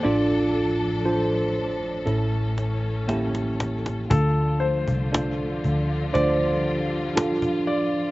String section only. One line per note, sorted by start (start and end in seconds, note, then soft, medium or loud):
0.00 2.03 D4 medium
0.00 4.07 A4 medium
0.05 4.07 A2 medium
0.05 2.05 F3 medium
2.06 4.09 E3 soft
2.06 4.09 C#4 medium
4.11 8.11 D3 medium
4.11 8.11 F3 medium
4.11 6.13 A3 medium
4.11 8.11 F4 medium
6.17 8.11 G3 medium